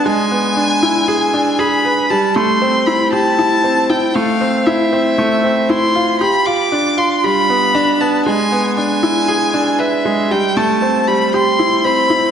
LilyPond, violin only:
\new Staff \with { instrumentName = "Violin" } { \time 4/4 \key e \phrygian \tempo 4 = 117 gis''2. b''4 | a''8 c'''4 b''8 a''4. g''8 | f''4 e''2 c'''4 | b''8 d'''4 c'''8 b''4. a''8 |
gis''4 gis''2 e''4 | g''8 a''4 b''8 c'''4 b''4 | }